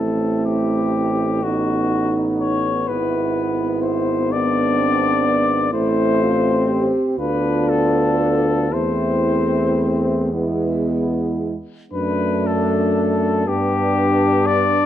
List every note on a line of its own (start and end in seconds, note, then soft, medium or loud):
0.00 2.85 A1 soft
0.00 1.40 A3 soft
0.00 1.44 C4 soft
0.00 1.40 E4 soft
0.00 0.42 A4 medium
0.46 1.45 G4 soft
1.43 4.15 B3 soft
1.43 5.57 B3 soft
1.43 2.71 D#4 soft
1.43 2.23 F#4 medium
2.40 2.90 C#5 medium
2.88 5.70 G#1 soft
2.88 4.29 E4 soft
2.88 3.82 B4 medium
3.82 4.33 C5 medium
4.31 4.81 B3 medium
4.31 5.73 D4 medium
4.31 5.73 D5 medium
4.79 5.26 C4 soft
5.27 5.75 B3 medium
5.73 6.89 A1 medium
5.73 6.91 A3 medium
5.73 7.16 C4 medium
5.73 6.20 E4 soft
5.73 6.89 C5 medium
6.22 6.70 F4 medium
6.70 7.18 G4 soft
7.18 8.74 D2 soft
7.18 8.69 B3 medium
7.18 8.70 D4 medium
7.18 8.72 F4 soft
7.18 7.70 B4 medium
7.69 8.75 A4 medium
8.71 11.59 E2 soft
8.71 10.30 A3 soft
8.71 10.29 C4 medium
8.71 10.15 E4 soft
8.71 10.33 C5 medium
10.32 11.57 G#3 soft
10.32 11.59 B3 medium
10.32 11.56 E4 soft
11.92 13.49 F#2 medium
11.92 13.49 A3 medium
11.92 13.42 D4 medium
11.92 13.43 D4 medium
11.92 12.48 B4 medium
12.47 13.49 A4 medium
13.46 14.86 G2 medium
13.46 14.86 B3 medium
13.46 14.86 D4 medium
13.46 14.48 G4 medium
14.47 14.86 D5 medium